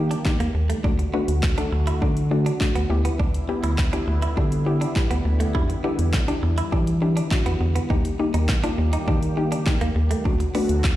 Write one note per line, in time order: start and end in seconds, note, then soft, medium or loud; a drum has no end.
0.00 0.15 D#3 loud
0.00 0.82 D#3 medium
0.00 0.80 G3 medium
0.00 0.14 A#3 medium
0.00 0.82 A#3 medium
0.00 0.15 D#4 medium
0.00 0.15 G4 medium
0.00 0.82 G4 medium
0.11 0.19 D4 medium
0.11 closed hi-hat medium
0.25 0.62 A#3 medium
0.25 0.62 D#4 medium
0.25 0.63 G4 loud
0.25 kick loud
0.25 snare medium
0.25 clap loud
0.40 0.50 D#2 medium
0.40 0.48 A#3 medium
0.40 closed hi-hat medium
0.55 0.74 D#2 loud
0.55 muted clean electric guitar stroke soft
0.70 0.78 A3 medium
0.70 closed hi-hat medium
0.84 1.04 D2 loud
0.84 2.88 D3 medium
0.84 2.88 F#3 medium
0.84 1.03 A3 medium
0.84 2.88 A3 medium
0.84 1.03 D4 medium
0.84 0.93 D4 medium
0.84 2.88 F#4 medium
0.84 1.03 F#4 loud
0.84 kick loud
0.99 muted clean electric guitar stroke soft
0.99 closed hi-hat medium
1.13 1.41 A3 medium
1.13 1.22 B3 medium
1.13 1.41 D4 medium
1.13 1.42 F#4 loud
1.28 1.48 D2 medium
1.28 closed hi-hat medium
1.43 kick loud
1.43 snare medium
1.43 clap loud
1.57 1.85 A3 medium
1.57 1.86 D4 medium
1.57 1.66 D4 medium
1.57 1.86 A4 medium
1.57 closed hi-hat medium
1.72 1.92 D2 loud
1.72 muted clean electric guitar stroke soft
1.87 1.95 E4 medium
1.87 closed hi-hat medium
2.02 2.51 D3 loud
2.02 2.20 A3 medium
2.02 2.20 D4 medium
2.02 2.10 D4 medium
2.02 2.21 F#4 medium
2.02 kick loud
2.17 closed hi-hat medium
2.31 2.50 A3 medium
2.31 2.50 D4 medium
2.31 2.50 F#4 medium
2.31 muted clean electric guitar stroke soft
2.46 2.54 D4 medium
2.46 closed hi-hat medium
2.60 2.90 A3 medium
2.60 2.90 D4 medium
2.60 2.90 F#4 medium
2.60 kick loud
2.60 snare medium
2.60 clap loud
2.75 2.85 D2 medium
2.75 2.84 B3 medium
2.75 closed hi-hat medium
2.90 3.10 D2 loud
2.90 7.86 D3 medium
2.90 10.21 G3 medium
2.90 3.37 B3 loud
2.90 7.86 B3 medium
2.90 3.37 E4 medium
2.90 7.86 E4 medium
2.90 3.37 G4 loud
2.90 muted clean electric guitar stroke soft
3.05 3.13 B3 medium
3.05 closed hi-hat medium
3.19 3.39 D2 loud
3.19 3.28 D4 medium
3.19 kick loud
3.34 closed hi-hat medium
3.49 3.77 B3 medium
3.49 3.77 E4 medium
3.49 3.77 G4 loud
3.49 muted clean electric guitar stroke soft
3.64 3.83 D2 medium
3.64 3.72 E4 medium
3.64 closed hi-hat medium
3.78 kick loud
3.78 snare medium
3.78 clap loud
3.93 4.21 B3 medium
3.93 4.01 D4 medium
3.93 4.21 E4 medium
3.93 4.21 G4 medium
3.93 closed hi-hat medium
4.08 4.27 D2 loud
4.08 muted clean electric guitar stroke soft
4.22 4.31 E4 medium
4.22 closed hi-hat medium
4.37 4.86 D3 loud
4.37 4.56 B3 medium
4.37 4.45 D4 medium
4.37 4.56 E4 medium
4.37 4.56 G4 medium
4.37 kick loud
4.52 closed hi-hat medium
4.66 4.85 B3 medium
4.66 4.85 E4 medium
4.66 4.85 G4 loud
4.66 muted clean electric guitar stroke soft
4.81 4.89 D4 medium
4.81 closed hi-hat medium
4.96 5.33 B3 medium
4.96 5.33 E4 medium
4.96 5.33 G4 medium
4.96 kick loud
4.96 snare medium
4.96 clap loud
5.11 5.20 D2 medium
5.11 5.19 B3 medium
5.11 closed hi-hat medium
5.25 5.45 D2 loud
5.25 muted clean electric guitar stroke soft
5.40 5.48 A3 medium
5.40 closed hi-hat medium
5.54 5.74 E2 loud
5.54 5.73 D4 medium
5.54 5.73 E4 medium
5.54 5.63 E4 medium
5.54 5.73 G4 loud
5.54 kick loud
5.69 muted clean electric guitar stroke soft
5.69 closed hi-hat medium
5.84 5.92 B3 medium
5.84 6.12 D4 medium
5.84 6.12 E4 medium
5.84 6.12 G4 loud
5.99 6.18 E2 medium
5.99 closed hi-hat medium
6.13 kick loud
6.13 snare medium
6.13 clap loud
6.28 6.56 D4 medium
6.28 6.37 D4 medium
6.28 6.56 E4 medium
6.28 6.56 G4 medium
6.28 closed hi-hat medium
6.43 6.63 E2 medium
6.43 muted clean electric guitar stroke soft
6.58 6.66 E4 medium
6.58 closed hi-hat medium
6.72 7.21 E3 loud
6.72 6.91 D4 medium
6.72 6.81 D4 medium
6.72 6.91 E4 medium
6.72 6.91 G4 medium
6.72 kick loud
6.87 closed hi-hat medium
7.02 7.20 D4 medium
7.02 7.20 E4 medium
7.02 7.20 G4 medium
7.02 muted clean electric guitar stroke soft
7.17 7.25 D4 medium
7.17 closed hi-hat medium
7.31 7.68 D4 medium
7.31 7.68 E4 medium
7.31 7.68 F#4 loud
7.31 kick loud
7.31 snare medium
7.31 clap loud
7.46 7.56 E2 medium
7.46 7.54 B3 medium
7.46 closed hi-hat medium
7.61 7.80 E2 loud
7.61 muted clean electric guitar stroke soft
7.75 7.84 B3 medium
7.75 closed hi-hat medium
7.90 8.10 D#2 loud
7.90 10.23 D#3 medium
7.90 8.09 A#3 medium
7.90 10.23 A#3 medium
7.90 8.09 D#4 medium
7.90 7.98 D#4 medium
7.90 10.23 G4 medium
7.90 8.09 G4 loud
7.90 kick loud
8.05 closed hi-hat medium
8.19 8.47 A#3 medium
8.19 8.47 D#4 medium
8.19 8.47 G4 medium
8.19 muted clean electric guitar stroke soft
8.34 8.54 D#2 medium
8.34 8.42 D#4 medium
8.34 closed hi-hat medium
8.49 kick loud
8.49 snare medium
8.49 clap loud
8.63 8.91 A#3 medium
8.63 8.72 D4 medium
8.63 8.91 D#4 medium
8.63 8.92 F4 medium
8.63 closed hi-hat soft
8.78 8.98 D#2 loud
8.78 muted clean electric guitar stroke soft
8.93 9.01 D#4 medium
8.93 closed hi-hat medium
9.08 9.57 D#3 loud
9.08 9.26 A#3 medium
9.08 9.16 D4 medium
9.08 9.26 D#4 medium
9.08 9.26 G4 medium
9.08 kick loud
9.22 closed hi-hat medium
9.37 9.56 A#3 medium
9.37 9.56 D#4 medium
9.37 9.56 G4 loud
9.37 muted clean electric guitar stroke soft
9.52 9.60 D4 medium
9.52 closed hi-hat medium
9.66 10.04 A#3 medium
9.66 10.04 D#4 medium
9.66 10.04 G4 medium
9.66 kick loud
9.66 snare medium
9.66 clap loud
9.81 9.91 D#2 medium
9.81 9.90 A#3 medium
9.81 closed hi-hat medium
9.96 10.15 D#2 loud
9.96 muted clean electric guitar stroke soft
10.11 10.19 A3 medium
10.11 closed hi-hat medium
10.25 10.45 D2 loud
10.25 10.96 D3 medium
10.25 10.96 F#3 medium
10.25 10.44 A3 medium
10.25 10.96 A3 medium
10.25 10.44 D4 medium
10.25 10.34 D4 medium
10.25 10.96 F#4 medium
10.25 10.44 F#4 medium
10.25 kick loud
10.40 muted clean electric guitar stroke soft
10.40 closed hi-hat medium
10.54 10.82 A3 medium
10.54 10.63 B3 medium
10.54 10.83 D4 medium
10.54 10.83 F#4 medium
10.54 open hi-hat medium
10.69 10.89 D2 medium
10.69 closed hi-hat medium
10.84 kick loud
10.84 snare medium
10.84 clap loud